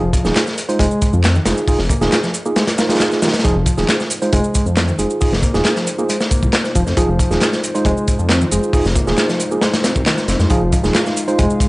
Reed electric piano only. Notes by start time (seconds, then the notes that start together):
Already playing: F3
0.69 G#3
0.80 G#3
1.13 F3
1.24 C4
1.36 D#3
1.46 G#3
1.90 A#3
2.23 F3
2.46 A#3
2.56 G#3
2.78 F4
3.22 D#3
3.44 F3
4.22 G#3
4.33 G#3
4.66 F3
4.77 C4
4.88 D#3
4.99 G#3
5.43 A#3
5.76 F3
5.98 A#3
6.09 G#3
6.31 A#3
6.75 F3
6.97 F3
7.75 G#3
7.86 G#3
8.19 F3
8.30 C4
8.41 D#3
8.52 G#3
8.96 A#3
9.30 F3
9.52 A#3
9.62 G#3
9.84 C4
10.06 D#3
10.29 C4
10.40 G#3
10.51 F3
11.28 G#3
11.39 G#3